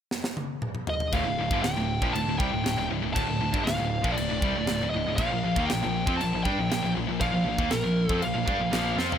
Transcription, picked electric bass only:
1.13 D1
1.25 D1
1.39 D1
1.51 G1
1.63 D1
1.77 D1
2.02 A#1
2.13 D1
2.26 D1
2.40 C2
2.51 D1
2.64 D1
2.78 D1
2.90 D1
3.04 D1
3.16 D1
3.29 D1
3.41 D1
3.54 G1
3.67 D1
3.80 D1
4.04 A#1
4.20 D1
4.31 D1
4.42 C2
4.56 D1
4.70 D1
4.82 D1
4.94 D1
5.07 D1
5.18 A#1
5.32 A#1
5.45 A#1
5.57 D#2
5.72 A#1
5.85 A#1
6.07 F2
6.22 A#1
6.34 A#1
6.45 G2
6.59 A#1
6.72 A#1
6.84 A#1
6.96 A#1
7.08 A#1
7.21 A#1
7.33 A#1
7.45 A#1
7.58 D#2
7.70 A#1
7.84 A#1
8.10 F2
8.22 A#1
8.35 A#1
8.48 G2
8.60 A#1
8.72 A#1
8.97 F2

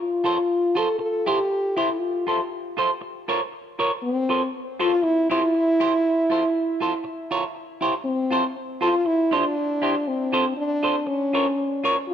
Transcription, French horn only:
0.00 F4
0.77 A4
1.00 A4
1.27 G4
1.78 E4
1.99 F4
4.02 C4
4.81 F4
5.03 E4
5.31 E4
8.05 C4
8.83 F4
9.06 E4
9.33 D4
10.08 C4
10.57 D4
11.07 C#4
12.07 F4

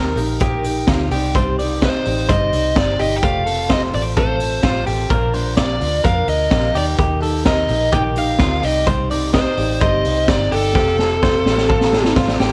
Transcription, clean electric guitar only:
Already playing: A#4
0.41 G4
0.88 F4
1.12 G4
1.35 C5
1.59 D5
1.82 D#5
2.29 C5
2.99 G4
3.23 G4
3.46 A4
3.70 C5
4.17 A4
4.63 F4
4.87 G4
5.10 A#4
5.34 C5
5.57 D5
6.04 A#4
6.75 G4
6.99 G4
7.22 A4
7.46 A#4
7.92 G4
8.40 F4
8.63 G4
8.87 C5
9.11 D5
9.34 D#5
9.81 C5
10.52 G4
10.75 G4
10.99 A4
11.23 C5
11.69 A4
12.16 F4
12.40 G4

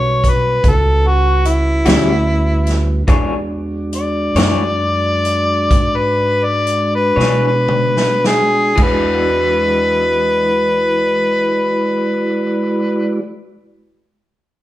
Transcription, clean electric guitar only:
1.85 A2 G3 C#4 F#4
3.08 E3 D4 G#4 C#5
4.36 E3 D4 G#4 C#5
7.16 E3 D4 G#4 C#5
8.76 E3 G#3
8.80 D4 F#4

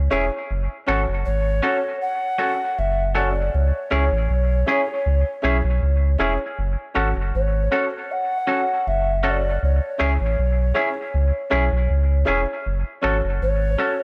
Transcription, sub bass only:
0.12 E1
0.51 F#1
0.89 G#1
1.08 F#1
1.27 G#1
2.79 F#1
3.54 C#2
3.92 C#2
4.12 A1
4.30 B1
5.06 C#2
5.44 B1
5.64 B1
5.82 C#2
6.20 E1
6.59 F#1
6.96 G#1
7.17 F#1
7.35 G#1
8.87 F#1
9.63 C#2
10.01 C#2
10.20 A1
10.39 B1
11.14 C#2
11.52 B1
11.72 B1
11.90 C#2
12.28 E1
12.66 F#1
13.04 G#1
13.24 F#1
13.42 G#1

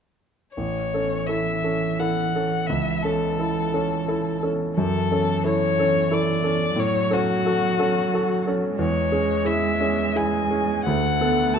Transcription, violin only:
0.55 C#5
1.27 E5
1.99 F#5
2.66 E5
3.03 A4
4.78 A4
5.46 C#5
6.14 D5
6.80 C#5
7.13 F#4
8.81 C#5
9.46 E5
10.17 G#5
10.84 F#5
11.54 A5

